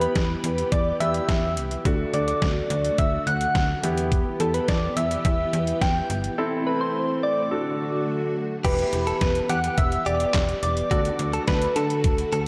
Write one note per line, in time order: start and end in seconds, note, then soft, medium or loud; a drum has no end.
0.00 1.83 E3 medium
0.00 0.98 B3 medium
0.00 1.83 B3 medium
0.00 0.98 E4 medium
0.00 0.98 G4 medium
0.00 1.83 G4 medium
0.00 0.68 B4 medium
0.00 closed hi-hat soft
0.15 0.35 E2 medium
0.15 kick loud
0.15 snare loud
0.15 closed hi-hat medium
0.44 0.64 E2 loud
0.44 closed hi-hat medium
0.58 closed hi-hat medium
0.72 0.92 E2 loud
0.72 0.98 D5 loud
0.72 kick loud
0.72 closed hi-hat medium
1.00 1.20 E2 loud
1.00 1.85 B3 medium
1.00 1.85 E4 soft
1.00 1.85 G4 medium
1.00 1.53 E5 loud
1.00 closed hi-hat medium
1.14 closed hi-hat medium
1.29 1.59 E2 loud
1.29 kick loud
1.29 snare loud
1.29 closed hi-hat medium
1.57 1.77 C2 medium
1.57 closed hi-hat medium
1.71 closed hi-hat medium
1.85 2.05 D2 loud
1.85 3.81 D3 medium
1.85 3.79 A3 medium
1.85 3.81 A3 medium
1.85 3.79 D4 medium
1.85 3.81 F#4 medium
1.85 3.79 F#4 medium
1.85 kick loud
1.85 closed hi-hat medium
2.14 2.33 D2 loud
2.14 2.27 D5 medium
2.14 closed hi-hat medium
2.28 3.00 D5 medium
2.28 closed hi-hat soft
2.42 2.62 D2 loud
2.42 kick loud
2.42 snare loud
2.42 closed hi-hat medium
2.70 2.90 D2 loud
2.70 closed hi-hat medium
2.85 closed hi-hat medium
2.98 3.18 D2 loud
2.98 3.28 E5 loud
2.98 kick loud
2.98 closed hi-hat medium
3.27 3.47 D2 loud
3.27 3.83 F#5 loud
3.27 closed hi-hat medium
3.41 closed hi-hat medium
3.55 3.75 D2 loud
3.55 kick loud
3.55 snare loud
3.55 closed hi-hat medium
3.83 4.23 E2 loud
3.83 7.48 E3 medium
3.83 6.06 B3 medium
3.83 6.36 B3 medium
3.83 6.06 E4 medium
3.83 6.06 G4 medium
3.83 6.36 G4 medium
3.83 closed hi-hat medium
3.98 closed hi-hat medium
4.12 kick loud
4.12 closed hi-hat medium
4.40 4.60 E2 loud
4.40 4.56 A4 medium
4.40 closed hi-hat medium
4.54 4.70 B4 medium
4.54 closed hi-hat soft
4.68 4.88 E2 loud
4.68 4.98 D5 medium
4.68 kick loud
4.68 snare loud
4.68 closed hi-hat medium
4.97 5.16 E2 loud
4.97 5.24 E5 loud
4.97 closed hi-hat medium
5.11 closed hi-hat medium
5.25 5.45 E2 loud
5.25 5.83 E5 loud
5.25 kick loud
5.25 closed hi-hat medium
5.53 5.73 E2 loud
5.53 closed hi-hat medium
5.67 closed hi-hat medium
5.82 6.01 E2 medium
5.82 6.24 G5 loud
5.82 kick loud
5.82 snare loud
5.82 closed hi-hat medium
6.10 6.30 G1 medium
6.10 closed hi-hat medium
6.24 closed hi-hat medium
6.38 8.62 A3 medium
6.38 7.49 C4 medium
6.38 7.50 C4 medium
6.38 7.49 E4 medium
6.38 7.49 A4 medium
6.67 6.82 B4 medium
6.81 7.25 C5 loud
7.23 8.08 D5 loud
7.51 8.63 D3 medium
7.51 8.62 D4 medium
7.51 8.62 F#4 medium
7.51 8.63 F#4 medium
7.51 8.62 A4 medium
8.64 8.84 E1 loud
8.64 10.89 E3 medium
8.64 10.89 B3 medium
8.64 10.87 E4 medium
8.64 10.87 G4 medium
8.64 10.89 G4 medium
8.64 8.73 G4 loud
8.64 9.51 B4 loud
8.64 10.87 B4 medium
8.64 kick loud
8.64 closed hi-hat medium
8.64 crash loud
8.79 closed hi-hat medium
8.93 9.13 E1 loud
8.93 closed hi-hat medium
9.07 9.16 A4 medium
9.07 closed hi-hat soft
9.21 9.41 E1 loud
9.21 9.38 B4 medium
9.21 kick loud
9.21 snare loud
9.21 closed hi-hat medium
9.35 closed hi-hat medium
9.49 9.69 E2 loud
9.49 9.58 G4 medium
9.49 9.77 F#5 loud
9.49 closed hi-hat medium
9.64 closed hi-hat medium
9.78 9.98 E1 loud
9.78 10.08 E5 loud
9.78 kick loud
9.78 closed hi-hat medium
9.92 closed hi-hat soft
10.06 10.26 E1 loud
10.06 10.15 G4 medium
10.06 10.62 D5 loud
10.06 closed hi-hat medium
10.20 closed hi-hat medium
10.34 10.54 E1 loud
10.34 kick loud
10.34 snare loud
10.34 clap loud
10.34 closed hi-hat medium
10.49 closed hi-hat soft
10.63 10.83 E1 loud
10.63 10.89 D5 loud
10.63 closed hi-hat medium
10.77 closed hi-hat medium
10.91 11.11 D2 loud
10.91 12.48 D3 medium
10.91 12.48 A3 medium
10.91 12.48 D4 medium
10.91 11.00 F#4 loud
10.91 12.48 F#4 medium
10.91 12.48 A4 medium
10.91 11.44 D5 loud
10.91 kick loud
10.91 closed hi-hat medium
11.05 closed hi-hat medium
11.19 11.39 D2 loud
11.19 closed hi-hat medium
11.33 11.42 A4 medium
11.33 closed hi-hat soft
11.47 11.67 D2 loud
11.47 11.77 B4 medium
11.47 11.65 B4 medium
11.47 kick loud
11.47 snare loud
11.47 closed hi-hat medium
11.62 closed hi-hat medium
11.76 12.06 D3 loud
11.76 12.48 A4 medium
11.76 11.85 A4 medium
11.76 closed hi-hat medium
11.90 closed hi-hat medium
12.04 12.24 D2 loud
12.04 kick loud
12.04 closed hi-hat medium
12.18 closed hi-hat soft
12.32 12.48 D2 loud
12.32 12.41 A4 medium
12.32 closed hi-hat medium